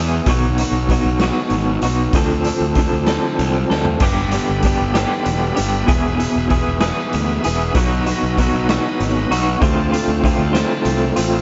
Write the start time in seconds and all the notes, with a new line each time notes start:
Already playing: E2 B2 G#4
0.00 E3 B3 E4
0.26 B1 B2 F#3 B3 D#4 F#4, kick, closed hi-hat
0.58 D#4 F#4, closed hi-hat
0.62 B3
0.72 B1
0.89 F#3 B3 D#4 F#4, kick, closed hi-hat
1.05 B1
1.20 F#3 B3 D#4 F#4, snare, closed hi-hat
1.24 B2
1.50 G#1, closed hi-hat
1.82 B1 B3 D#4 F#4, closed hi-hat
2.13 D2 D3 F3 C4 D4, kick, closed hi-hat
2.17 A4
2.44 C4 D4 A4, closed hi-hat
2.61 D2
2.75 F3 C4 D4 A4, kick, closed hi-hat
2.93 D2
3.07 F3 C4 D4 A4, snare, closed hi-hat
3.11 D3
3.39 C2, closed hi-hat
3.70 D2 C4 D4 A4, snare
3.85 floor tom
4.00 G1 G2 D3 G3 B3 D4 G4 B4 D5 B5, kick, closed hi-hat, splash
4.31 G3 B3 D4 G4, closed hi-hat
4.49 G1
4.63 G3 B3 D4 G4, kick, closed hi-hat
4.80 G1
4.94 G2 D3 G3 B3 D4 G4, snare, closed hi-hat
5.26 E1, closed hi-hat
5.55 G1 G3 B3 D4 G4, closed hi-hat
5.86 E1 E2 B2 E3 B3 E4 G#4 E5, kick, closed hi-hat
6.17 E3 B3 E4 G#4, closed hi-hat
6.36 E1
6.49 E3 B3 E4 G#4, kick, closed hi-hat
6.66 E1
6.81 E2 B2 E3 B3 E4 G#4, snare, closed hi-hat
7.13 D2, closed hi-hat
7.44 E1 E3 B3 E4 G#4, closed hi-hat
7.75 B1 B2 F#3 B3 D#4 F#4 D#5, kick, closed hi-hat
8.06 B3 D#4 F#4, closed hi-hat
8.23 B1
8.37 F#3 B3 D#4 F#4, kick, closed hi-hat
8.53 B1
8.69 B2 F#3 B3 D#4 F#4, snare, closed hi-hat
9.00 G#1, closed hi-hat
9.31 B1 B3 D#4 F#4, closed hi-hat
9.60 D2 D3 A3 C4 F4 C5 D5 A5, kick, closed hi-hat
9.92 A3 C4 F4, closed hi-hat
10.08 D2
10.24 D3 A3 C4 F4, kick, closed hi-hat
10.38 D2
10.53 D3 A3 C4 F4, snare, closed hi-hat
10.85 C2, closed hi-hat
11.16 A1 A3 C4 F4, closed hi-hat